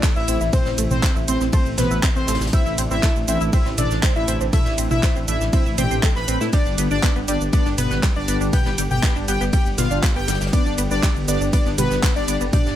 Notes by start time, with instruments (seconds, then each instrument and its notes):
Already playing: analog synth pad C3 E3 A3 E4
0.03 synth arpeggio sound A3, kick, snare, clap, closed hi-hat, ride, shaker
0.16 detuned saw bass A1, supersaw synth E4, analog polysynth E5, shaker
0.28 detuned saw bass A1, synth arpeggio sound C4, closed hi-hat, shaker
0.41 detuned saw bass A1, synth arpeggio sound E4, shaker
0.53 synth arpeggio sound C4, supersaw synth C4, analog polysynth C5, kick, closed hi-hat, mid tom, ride, shaker
0.65 detuned saw bass A1, synth arpeggio sound C4, snare, shaker
0.78 detuned saw bass A1, synth arpeggio sound A3, closed hi-hat, shaker
0.91 detuned saw bass A1, supersaw synth C4, analog polysynth C5, mid tom, shaker
1.03 synth arpeggio sound C4, kick, snare, clap, closed hi-hat, ride, shaker
1.16 detuned saw bass A1, synth arpeggio sound E4, shaker
1.28 detuned saw bass A1, supersaw synth C4, synth arpeggio sound C4, analog polysynth C5, closed hi-hat, shaker
1.41 detuned saw bass A1, synth arpeggio sound C4, snare, shaker
1.52 synth arpeggio sound A3, supersaw synth C4, analog polysynth C5, kick, closed hi-hat, ride, shaker
1.66 detuned saw bass A1, shaker
1.78 detuned saw bass A1, supersaw synth B3, synth arpeggio sound C4, analog polysynth B4, snare, closed hi-hat, mid tom, shaker
1.91 detuned saw bass A1, synth arpeggio sound E4, shaker
2.02 synth arpeggio sound C4, kick, snare, clap, closed hi-hat, ride, shaker
2.16 detuned saw bass A1, supersaw synth C4, synth arpeggio sound C4, analog polysynth C5, shaker
2.27 detuned saw bass A1, synth arpeggio sound A3, snare, closed hi-hat, shaker
2.35 snare, closed hi-hat
2.41 detuned saw bass A1, snare, closed hi-hat, shaker
2.47 snare, closed hi-hat
2.53 synth arpeggio sound C4, analog synth pad D4, supersaw synth E4, analog polysynth E5, kick, closed hi-hat, ride, shaker
2.66 detuned saw bass A1, synth arpeggio sound E4, closed hi-hat, shaker
2.78 detuned saw bass A1, synth arpeggio sound C4, closed hi-hat, shaker
2.91 detuned saw bass A1, synth arpeggio sound C4, supersaw synth E4, analog polysynth E5, shaker
3.03 synth arpeggio sound A3, kick, snare, clap, closed hi-hat, ride, shaker
3.16 detuned saw bass A1, shaker
3.28 detuned saw bass A1, synth arpeggio sound C4, supersaw synth E4, analog polysynth E5, closed hi-hat, shaker
3.41 detuned saw bass A1, synth arpeggio sound E4, shaker
3.53 synth arpeggio sound C4, supersaw synth E4, analog polysynth E5, kick, closed hi-hat, ride, shaker
3.66 detuned saw bass A1, synth arpeggio sound C4, snare, shaker
3.78 detuned saw bass A1, synth arpeggio sound A3, supersaw synth D4, analog polysynth D5, closed hi-hat, mid tom, shaker
3.91 detuned saw bass A1, snare, shaker
4.02 synth arpeggio sound C4, kick, snare, clap, closed hi-hat, ride, shaker
4.16 detuned saw bass A1, supersaw synth E4, synth arpeggio sound E4, analog polysynth E5, shaker
4.28 detuned saw bass A1, synth arpeggio sound C4, closed hi-hat, shaker
4.41 detuned saw bass A1, synth arpeggio sound C4, shaker
4.53 synth arpeggio sound A3, supersaw synth E4, analog polysynth E5, kick, closed hi-hat, mid tom, ride, shaker
4.66 detuned saw bass A1, snare, shaker
4.78 detuned saw bass A1, synth arpeggio sound C4, closed hi-hat, shaker
4.91 detuned saw bass A1, synth arpeggio sound E4, supersaw synth E4, analog polysynth E5, mid tom, shaker
5.03 synth arpeggio sound C4, kick, snare, clap, closed hi-hat, ride, shaker
5.16 detuned saw bass A1, synth arpeggio sound C4, shaker
5.28 detuned saw bass A1, synth arpeggio sound A3, supersaw synth E4, analog polysynth E5, closed hi-hat, shaker
5.41 detuned saw bass A1, snare, shaker
5.53 synth arpeggio sound C4, supersaw synth E4, analog polysynth E5, kick, closed hi-hat, ride, shaker
5.66 detuned saw bass A1, synth arpeggio sound E4, shaker
5.78 detuned saw bass A1, synth arpeggio sound C4, supersaw synth G4, analog polysynth G5, closed hi-hat, mid tom, shaker
5.91 detuned saw bass A1, synth arpeggio sound C4, shaker
6.03 synth arpeggio sound A3, kick, clap, closed hi-hat, ride, shaker
6.16 detuned saw bass A1, supersaw synth B4, analog polysynth B5, snare, shaker
6.28 detuned saw bass A1, synth arpeggio sound C4, closed hi-hat, shaker
6.41 detuned saw bass A2, synth arpeggio sound E4, snare, shaker
6.52 analog synth pad D3 G3 B3 G4, synth arpeggio sound G3, supersaw synth D4, analog polysynth D5, kick, closed hi-hat, ride, shaker
6.66 detuned saw bass G1, closed hi-hat, shaker
6.78 detuned saw bass G1, synth arpeggio sound B3, closed hi-hat, shaker
6.91 detuned saw bass G1, synth arpeggio sound D4, supersaw synth D4, analog polysynth D5, shaker
7.03 synth arpeggio sound B3, kick, snare, clap, closed hi-hat, ride, shaker
7.16 detuned saw bass G1, synth arpeggio sound B3, shaker
7.28 detuned saw bass G1, synth arpeggio sound G3, supersaw synth D4, analog polysynth D5, closed hi-hat, shaker
7.41 detuned saw bass G1, shaker
7.52 synth arpeggio sound B3, supersaw synth D4, analog polysynth D5, kick, closed hi-hat, ride, shaker
7.66 detuned saw bass G1, synth arpeggio sound D4, snare, shaker
7.78 detuned saw bass G1, synth arpeggio sound B3, supersaw synth B3, analog polysynth B4, closed hi-hat, mid tom, shaker
7.91 detuned saw bass G1, synth arpeggio sound B3, snare, shaker
8.03 synth arpeggio sound G3, kick, snare, clap, closed hi-hat, ride, shaker
8.16 detuned saw bass G1, supersaw synth D4, analog polysynth D5, shaker
8.28 detuned saw bass G1, synth arpeggio sound B3, closed hi-hat, shaker
8.41 detuned saw bass G1, synth arpeggio sound D4, shaker
8.53 synth arpeggio sound B3, supersaw synth G4, analog polysynth G5, kick, closed hi-hat, mid tom, ride, shaker
8.66 detuned saw bass G1, synth arpeggio sound B3, snare, shaker
8.78 detuned saw bass G1, synth arpeggio sound G3, closed hi-hat, shaker
8.91 detuned saw bass G1, supersaw synth G4, analog polysynth G5, mid tom, shaker
9.03 synth arpeggio sound B3, kick, snare, clap, closed hi-hat, ride, shaker
9.16 detuned saw bass G1, synth arpeggio sound D4, shaker
9.28 detuned saw bass G1, synth arpeggio sound B3, supersaw synth G4, analog polysynth G5, closed hi-hat, shaker
9.41 detuned saw bass G1, synth arpeggio sound B3, snare, shaker
9.52 synth arpeggio sound G3, supersaw synth G4, analog polysynth G5, kick, closed hi-hat, ride, shaker
9.66 detuned saw bass G1, shaker
9.78 detuned saw bass G1, synth arpeggio sound B3, supersaw synth F4, analog polysynth F5, snare, closed hi-hat, mid tom, shaker
9.91 detuned saw bass G1, synth arpeggio sound D4, shaker
10.02 synth arpeggio sound B3, kick, snare, clap, closed hi-hat, ride, shaker
10.16 detuned saw bass G1, synth arpeggio sound B3, supersaw synth G4, analog polysynth G5, shaker
10.28 detuned saw bass G1, synth arpeggio sound G3, snare, closed hi-hat, shaker
10.34 snare, closed hi-hat
10.41 detuned saw bass G1, snare, closed hi-hat, shaker
10.47 snare, closed hi-hat
10.53 synth arpeggio sound B3, supersaw synth D4, analog polysynth D5, kick, closed hi-hat, ride, shaker
10.66 detuned saw bass G1, synth arpeggio sound D4, closed hi-hat, shaker
10.78 detuned saw bass G1, synth arpeggio sound B3, closed hi-hat, shaker
10.91 detuned saw bass G1, synth arpeggio sound B3, supersaw synth D4, analog polysynth D5, shaker
11.03 synth arpeggio sound G3, kick, snare, clap, closed hi-hat, ride, shaker
11.16 detuned saw bass G1, shaker
11.28 detuned saw bass G1, synth arpeggio sound B3, supersaw synth D4, analog polysynth D5, closed hi-hat, shaker
11.41 detuned saw bass G1, synth arpeggio sound D4, shaker
11.53 synth arpeggio sound B3, supersaw synth D4, analog polysynth D5, kick, closed hi-hat, ride, shaker
11.66 detuned saw bass G1, synth arpeggio sound B3, snare, shaker
11.78 detuned saw bass G1, synth arpeggio sound G3, supersaw synth B3, analog polysynth B4, closed hi-hat, mid tom, shaker
11.91 detuned saw bass G1, snare, shaker
12.03 synth arpeggio sound B3, kick, snare, clap, closed hi-hat, ride, shaker
12.16 detuned saw bass G1, supersaw synth D4, synth arpeggio sound D4, analog polysynth D5, shaker
12.28 detuned saw bass G1, synth arpeggio sound B3, closed hi-hat, shaker
12.41 detuned saw bass G1, synth arpeggio sound B3, shaker
12.53 synth arpeggio sound G3, supersaw synth D4, analog polysynth D5, kick, closed hi-hat, mid tom, ride, shaker
12.66 detuned saw bass G1, snare, shaker